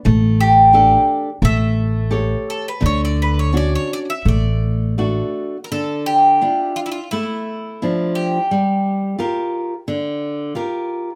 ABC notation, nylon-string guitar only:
X:1
M:4/4
L:1/8
Q:1/4=86
K:D
V:1 name="Nylon-string guitar"
A,2 [DGA]2 A,2 [GAc]2 | D,2 [CDF]2 A,2 [A,DF]2 | [K:Dm] D,2 [DEF]2 A,2 [F,DE]2 | G,2 [FGB]2 D,2 [FGB]2 |]